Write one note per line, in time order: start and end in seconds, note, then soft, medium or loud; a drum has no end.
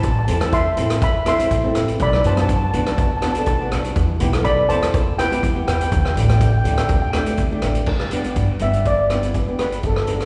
0.02 0.25 A1 loud
0.02 0.09 A5 medium
0.02 kick medium
0.02 closed hi-hat medium
0.11 0.18 A5 medium
0.19 0.24 A5 medium
0.25 0.70 E2 loud
0.25 0.35 C4 medium
0.25 0.36 E4 medium
0.25 0.36 A4 medium
0.25 0.32 A5 medium
0.25 closed hi-hat loud
0.33 0.40 A5 medium
0.40 0.63 C4 medium
0.40 0.63 E4 medium
0.40 0.63 A4 medium
0.40 0.47 A5 medium
0.40 cross-stick medium
0.40 closed hi-hat medium
0.52 0.99 E5 medium
0.52 1.04 C6 loud
0.52 kick medium
0.52 closed hi-hat medium
0.77 0.99 A1 medium
0.77 1.07 C4 medium
0.77 1.07 E4 medium
0.77 1.07 A4 medium
0.77 closed hi-hat medium
0.90 cross-stick medium
0.90 closed hi-hat medium
1.02 1.25 E5 medium
1.02 1.26 B5 medium
1.02 kick loud
1.02 closed hi-hat medium
1.26 1.34 C4 medium
1.26 1.34 E4 medium
1.26 1.34 A4 medium
1.26 1.97 E5 medium
1.26 1.97 C6 loud
1.26 cross-stick medium
1.26 closed hi-hat medium
1.39 1.53 C4 medium
1.39 1.53 E4 medium
1.39 1.54 A4 medium
1.39 closed hi-hat medium
1.51 1.72 A1 medium
1.51 kick medium
1.51 closed hi-hat medium
1.64 2.00 C4 medium
1.64 2.00 E4 medium
1.64 2.00 A4 medium
1.75 1.97 A1 medium
1.75 cross-stick medium
1.75 closed hi-hat medium
1.88 closed hi-hat medium
1.99 2.21 B1 loud
1.99 2.24 D5 medium
1.99 2.26 B5 loud
1.99 kick loud
1.99 closed hi-hat medium
2.13 cross-stick medium
2.24 2.66 F#2 loud
2.24 2.32 B3 medium
2.24 2.32 D4 medium
2.24 2.32 F#4 medium
2.24 2.33 C5 medium
2.24 2.33 A5 medium
2.24 closed hi-hat medium
2.35 2.59 B3 medium
2.35 2.59 D4 medium
2.35 2.40 A5 medium
2.35 cross-stick medium
2.35 closed hi-hat medium
2.39 2.60 F#4 medium
2.39 2.47 A5 medium
2.48 2.55 A5 medium
2.48 kick loud
2.48 closed hi-hat medium
2.56 2.63 A5 medium
2.64 2.70 A5 medium
2.71 2.94 B1 medium
2.71 3.03 B3 medium
2.71 3.03 D4 medium
2.71 3.03 F#4 medium
2.71 2.77 A5 medium
2.71 closed hi-hat medium
2.79 2.85 A5 medium
2.86 2.92 A5 medium
2.86 cross-stick medium
2.86 closed hi-hat medium
2.93 3.00 A5 medium
2.98 3.07 A5 medium
2.98 kick loud
2.98 closed hi-hat medium
3.08 3.15 A5 medium
3.17 3.22 A5 medium
3.22 3.30 B3 medium
3.22 3.30 D4 medium
3.22 3.31 F#4 medium
3.22 3.30 A5 medium
3.22 cross-stick medium
3.22 closed hi-hat medium
3.33 3.50 B3 medium
3.33 3.50 D4 medium
3.33 3.38 A5 medium
3.33 closed hi-hat medium
3.37 3.50 A4 medium
3.37 3.45 A5 medium
3.46 3.68 B1 medium
3.46 3.52 A5 medium
3.46 kick loud
3.46 closed hi-hat medium
3.53 3.60 A5 medium
3.60 3.96 B3 medium
3.60 3.96 D4 medium
3.60 3.97 F#4 medium
3.72 3.92 B1 medium
3.72 cross-stick medium
3.72 closed hi-hat medium
3.84 closed hi-hat medium
3.96 4.17 E2 loud
3.96 kick loud
3.96 closed hi-hat medium
4.20 4.62 B1 loud
4.20 4.28 B3 medium
4.20 4.28 E4 medium
4.20 4.28 G4 loud
4.20 closed hi-hat medium
4.33 4.55 B3 medium
4.33 4.56 E4 medium
4.33 4.56 A4 medium
4.33 cross-stick medium
4.33 closed hi-hat medium
4.44 4.68 D5 medium
4.44 4.67 B5 loud
4.44 kick medium
4.44 closed hi-hat medium
4.69 4.90 E2 medium
4.69 4.99 B3 medium
4.69 4.99 E4 medium
4.69 4.99 A4 medium
4.69 5.15 C5 medium
4.69 5.19 A5 loud
4.69 closed hi-hat medium
4.82 cross-stick medium
4.82 closed hi-hat medium
4.94 kick loud
4.94 closed hi-hat medium
5.18 5.26 B3 medium
5.18 5.26 E4 medium
5.18 5.26 G4 medium
5.18 5.64 B4 medium
5.18 5.64 G5 loud
5.18 cross-stick medium
5.18 closed hi-hat medium
5.31 5.45 B3 medium
5.31 5.45 E4 medium
5.31 5.46 G4 medium
5.31 closed hi-hat medium
5.43 5.64 E2 loud
5.43 kick medium
5.43 closed hi-hat medium
5.55 5.91 B3 medium
5.55 5.92 E4 medium
5.55 5.92 G4 medium
5.67 5.88 E2 medium
5.67 5.75 B4 medium
5.67 5.75 G5 medium
5.67 cross-stick medium
5.67 closed hi-hat medium
5.77 5.82 G5 medium
5.77 closed hi-hat medium
5.83 5.90 G5 medium
5.91 6.13 D2 loud
5.91 5.98 G5 soft
5.91 kick loud
5.91 closed hi-hat medium
5.99 6.05 G5 medium
6.05 6.12 G5 medium
6.05 cross-stick medium
6.13 6.58 A1 loud
6.13 6.23 A3 medium
6.13 6.24 D4 medium
6.13 6.24 G4 medium
6.13 6.19 G5 medium
6.13 closed hi-hat medium
6.20 6.28 G5 medium
6.29 6.51 A3 medium
6.29 6.51 D4 medium
6.29 6.51 G4 medium
6.29 6.34 G5 medium
6.29 cross-stick medium
6.29 closed hi-hat medium
6.35 6.42 G5 soft
6.41 6.49 G5 medium
6.41 kick medium
6.41 closed hi-hat medium
6.50 6.56 G5 medium
6.58 6.64 G5 medium
6.64 6.86 D2 medium
6.64 6.94 A3 medium
6.64 6.94 D4 medium
6.64 6.95 G4 medium
6.64 6.73 G5 soft
6.64 closed hi-hat medium
6.74 6.79 G5 medium
6.74 cross-stick medium
6.74 closed hi-hat medium
6.80 6.86 G5 soft
6.87 6.93 G5 medium
6.87 kick loud
6.87 closed hi-hat medium
6.94 7.01 G5 soft
7.02 7.09 G5 medium
7.10 7.22 A3 medium
7.10 7.22 D4 medium
7.10 7.16 G5 medium
7.10 cross-stick medium
7.10 closed hi-hat medium
7.15 7.22 G4 medium
7.15 7.25 G5 medium
7.26 7.41 A3 medium
7.26 7.41 D4 medium
7.26 7.41 G4 medium
7.26 closed hi-hat medium
7.37 7.59 D2 medium
7.37 kick medium
7.37 closed hi-hat medium
7.51 7.87 A3 medium
7.51 7.88 D4 medium
7.51 7.88 G4 medium
7.62 7.84 A1 medium
7.62 cross-stick medium
7.62 closed hi-hat medium
7.75 closed hi-hat medium
7.86 8.29 G1 medium
7.86 kick loud
7.86 crash medium
7.99 cross-stick medium
8.11 8.20 B3 medium
8.11 8.20 D4 medium
8.11 8.20 G4 medium
8.11 closed hi-hat medium
8.24 8.47 B3 medium
8.24 8.47 D4 medium
8.24 8.47 G4 medium
8.24 closed hi-hat soft
8.36 8.47 G2 medium
8.36 kick medium
8.36 closed hi-hat medium
8.59 9.44 G1 loud
8.59 8.91 B3 medium
8.59 8.91 D4 medium
8.59 8.91 G4 medium
8.59 8.84 E5 medium
8.59 closed hi-hat medium
8.73 closed hi-hat medium
8.85 9.62 D5 medium
8.85 kick medium
8.85 closed hi-hat medium
9.10 9.18 B3 medium
9.10 9.18 D4 medium
9.10 9.19 G4 medium
9.10 cross-stick medium
9.10 closed hi-hat medium
9.23 9.37 B3 medium
9.23 9.38 D4 medium
9.23 9.38 E4 medium
9.23 closed hi-hat medium
9.34 kick medium
9.34 closed hi-hat medium
9.47 9.84 B3 medium
9.47 9.84 D4 medium
9.47 9.84 G4 medium
9.59 9.83 B4 medium
9.59 cross-stick medium
9.59 closed hi-hat medium
9.72 closed hi-hat medium
9.83 10.25 G1 medium
9.83 10.25 A4 medium
9.83 kick loud
9.83 closed hi-hat soft
9.96 cross-stick medium
10.07 10.16 B3 medium
10.07 10.16 D4 medium
10.07 10.16 A4 medium
10.07 closed hi-hat medium
10.20 10.25 B3 medium
10.20 10.25 D4 medium
10.20 10.25 A4 medium
10.20 cross-stick medium
10.20 closed hi-hat medium